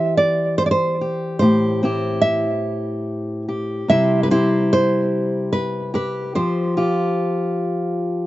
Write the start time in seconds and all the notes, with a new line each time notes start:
Already playing: E3 G4 C5 E5
0.17 D5
0.58 C5
0.66 D5
0.71 C5
1.01 G4
1.39 A2 G4 C5
1.83 C4 E4 G4
2.22 E5
3.49 G4
3.88 C3 G3 C4 E4 G4 E5
4.23 B4
4.31 C4 E4 G4 C5
4.73 C5
5.53 B4
5.94 G4 B4
6.35 F3 G4 C5
6.77 F4 G4